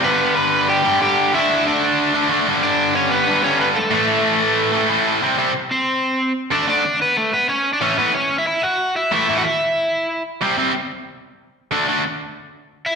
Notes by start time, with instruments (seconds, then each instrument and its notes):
0.02 distorted electric guitar G2 D3 G3, overdriven electric guitar B3 B4
0.36 overdriven electric guitar B4 B5
0.68 overdriven electric guitar G4 G5
0.83 distorted electric guitar G2 D3 G3
1.00 distorted electric guitar G2 D3 G3, overdriven electric guitar G4 G5
1.33 distorted electric guitar D3 A3 D4, overdriven electric guitar E4 E5
1.67 overdriven electric guitar D4 D5
2.14 distorted electric guitar D3 A3 D4
2.29 distorted electric guitar D3 A3
2.33 distorted electric guitar D4
2.46 distorted electric guitar G2 D3 G3
2.63 overdriven electric guitar D4 D5
2.95 overdriven electric guitar C#4 C#5
3.11 overdriven electric guitar B3 B4
3.27 distorted electric guitar G2 D3 G3
3.42 distorted electric guitar G2 D3 G3, overdriven electric guitar C#4 C#5
3.61 overdriven electric guitar B3 B4
3.76 overdriven electric guitar A3 A4
3.91 distorted electric guitar A2 E3 A3
4.72 distorted electric guitar A2 E3 A3
4.88 distorted electric guitar A2 E3 A3
5.22 distorted electric guitar C3 G3 C4
5.37 distorted electric guitar C3 G3 C4
5.71 overdriven electric guitar C4 C5
6.51 distorted electric guitar D3 A3 D4, overdriven electric guitar D4 D5
6.67 distorted electric guitar D3 A3 D4, overdriven electric guitar D4 D5
7.01 overdriven electric guitar B3 B4
7.17 overdriven electric guitar A3 A4
7.34 overdriven electric guitar B3 B4
7.49 overdriven electric guitar C#4 C#5
7.73 overdriven electric guitar D4 D5
7.81 distorted electric guitar A2 E3 A3, overdriven electric guitar C#4 C#5
7.97 distorted electric guitar A2 E3 A3, overdriven electric guitar B3 B4
8.14 overdriven electric guitar C#4 C#5
8.38 overdriven electric guitar E4 E5
8.46 overdriven electric guitar E4 E5
8.63 overdriven electric guitar F#4 F#5
8.96 overdriven electric guitar E4 E5
9.12 distorted electric guitar A2 E3 A3, overdriven electric guitar E4 E5
9.29 distorted electric guitar A2 E3 A3
9.38 overdriven electric guitar F#4 F#5
9.45 overdriven electric guitar E4 E5
10.42 distorted electric guitar C3 G3 C4
10.58 distorted electric guitar C3 G3 C4
11.71 distorted electric guitar D3 A3 D4
11.88 distorted electric guitar D3 A3 D4
12.86 overdriven electric guitar E4 E5